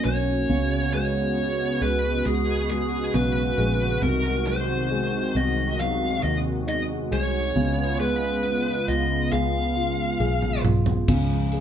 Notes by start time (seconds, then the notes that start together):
Already playing: D#3 F#3 A#3 C#4 F#4
0.04 B1 C#4 C#5
0.48 C#2 C#3 G#3 B3
0.94 G#3 C#5
1.38 F#4
1.81 C#2 G#3 B4
2.26 C#2 F#4 G#4
2.70 G#3 G#4
3.14 B1 C#3 B4
3.58 A#1 G#3
4.01 C2 C3 D#3 G#3 A#4
4.46 F#3 C5
4.91 G#3
5.35 C2 C4 D#5
5.79 F#3 F5
6.23 D#2 D#5
6.67 D#4 D#5
7.11 C2 G#3 C#5
7.55 C#2 C#3 B3 F4
8.00 G#3 B4
8.43 B3
8.88 C#2 F4 D#5
9.32 C#2 G#3 F5
9.76 F4
10.20 B1 G#4, high tom
10.42 mid tom
10.64 B1 F4, mid tom
10.86 floor tom
11.08 C#2 C#3 F3 F4, kick, crash
11.52 G#3, closed hi-hat